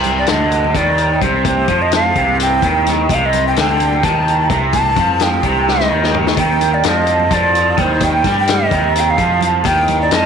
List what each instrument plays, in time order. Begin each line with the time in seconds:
Already playing: picked electric bass C2, tanpura C2 G2 C3, overdriven electric guitar C3, flute G5
0.04 closed hi-hat, low conga
0.18 flute D5
0.26 picked electric bass D2, overdriven electric guitar D3, flute D#5, snare, closed hi-hat
0.41 tanpura C3
0.51 closed hi-hat
0.64 high conga, low conga
0.75 picked electric bass D#2, overdriven electric guitar D#3, flute D5, kick, closed hi-hat
0.98 closed hi-hat
1.05 tanpura C3
1.22 picked electric bass C2, overdriven electric guitar C3, flute C5, kick, closed hi-hat, low conga
1.45 flute C5, kick, closed hi-hat, high conga
1.68 tanpura C2, picked electric bass F2, overdriven electric guitar F3, kick, closed hi-hat, low conga
1.82 flute D#5
1.92 flute F5, snare, closed hi-hat
2.16 picked electric bass C2, overdriven electric guitar C3, kick, closed hi-hat
2.29 tanpura G2, high conga, low conga
2.40 flute G5, closed hi-hat
2.62 picked electric bass D#2, overdriven electric guitar D#3, kick, closed hi-hat
2.86 tanpura C3, snare, closed hi-hat, low conga
3.09 picked electric bass C2, overdriven electric guitar C3, flute D#5, kick, closed hi-hat, high conga
3.14 flute F5
3.25 flute D#5
3.33 closed hi-hat, low conga
3.47 tanpura C3, flute G5
3.56 picked electric bass D2, overdriven electric guitar D3, snare, closed hi-hat
3.61 flute G5
3.80 closed hi-hat
3.92 high conga, low conga
4.03 picked electric bass D#2, overdriven electric guitar D#3, flute A5, kick, closed hi-hat
4.16 tanpura C2
4.28 closed hi-hat
4.50 picked electric bass C2, overdriven electric guitar C3, kick, closed hi-hat, low conga
4.73 flute A5, kick, closed hi-hat, high conga
4.78 tanpura G2
4.96 picked electric bass F2, overdriven electric guitar F3, kick, closed hi-hat, low conga
5.09 low conga
5.20 flute G5, snare, closed hi-hat
5.40 tanpura C3, kick, closed hi-hat
5.44 picked electric bass C2, overdriven electric guitar C3
5.57 high conga
5.68 flute D#5, snare
5.80 snare, high conga
5.90 picked electric bass D#2, overdriven electric guitar D#3, high conga
6.01 tanpura C3, snare, high conga
6.14 floor tom, low conga
6.27 snare, low conga
6.37 picked electric bass D#2, overdriven electric guitar D#3, flute G5, kick, closed hi-hat, high conga
6.61 tanpura C2, closed hi-hat, low conga
6.74 flute D5
6.83 picked electric bass F2, overdriven electric guitar F3, flute D#5, snare, closed hi-hat
7.07 closed hi-hat
7.20 high conga, low conga
7.24 tanpura G2
7.31 picked electric bass F2, overdriven electric guitar F3, flute D5, kick, closed hi-hat
7.55 closed hi-hat
7.77 picked electric bass D#2, overdriven electric guitar D#3, flute C5, kick, closed hi-hat, low conga
7.88 tanpura C3
8.00 flute G5, kick, closed hi-hat, high conga
8.24 picked electric bass G2, overdriven electric guitar G3, kick, snare, closed hi-hat, low conga
8.39 flute G5
8.47 tanpura C3, flute D#5, snare, closed hi-hat
8.71 picked electric bass D#2, overdriven electric guitar D#3, kick, closed hi-hat
8.84 high conga
8.95 flute F5, closed hi-hat
9.00 flute G5
9.08 tanpura C2, flute F5
9.18 picked electric bass F2, overdriven electric guitar F3, kick, closed hi-hat
9.41 closed hi-hat, low conga
9.64 picked electric bass D#2, overdriven electric guitar D#3, flute G5, kick, closed hi-hat, high conga
9.72 tanpura G2
9.88 closed hi-hat, low conga
10.02 flute D5
10.11 picked electric bass F2, overdriven electric guitar F3, flute D#5, snare, closed hi-hat